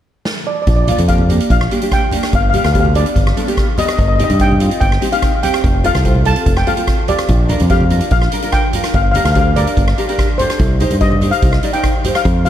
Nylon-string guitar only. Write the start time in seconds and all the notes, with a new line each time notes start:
0.87 A#3 D4 F4
1.08 A#3 D4 G4
1.29 A#3 D4 G4
1.71 A#3 D4 G4
1.81 A#3 D4 G4
2.12 A#3 D4 G4
2.53 B3 D4 G4
2.74 B3 D4 G4
2.94 B3 D4 G4
3.36 B3 D4 A4
3.47 B3 D4 G4
3.77 B3 D4 G4
4.19 C4 D#4 G4
4.39 C4 D#4 G4
4.60 C4 D#4 F4
5.01 C4 D#4 G4
5.12 C4 D#4 G4
5.43 C4 D#4 G4
5.84 C4 F4 A4
6.04 C4 F4 C5
6.24 C4 F4 A4
6.66 C4 F4 A4
6.77 C4 F4 A4
7.07 C4 F4 G4
7.48 D4 F4 A#4
7.69 D4 F4 G4
7.90 D4 F4 A#4
8.32 D4 F4 A#4
8.43 D4 F4 A#4
8.74 D4 F4 A#4
9.15 D4 G4 A#4
9.35 D4 G4 C5
9.55 D4 G4 A#4
9.98 D4 G4 A#4
10.08 D4 G4 A#4
10.39 D4 G4 A4
10.80 D#4 G4 C5
11.01 D#4 G4 C5
11.21 D#4 G4 C5
11.63 D#4 G4 D5
11.74 D#4 G4 C5
12.04 D#4 G4 C5
12.46 F4 A#4 C5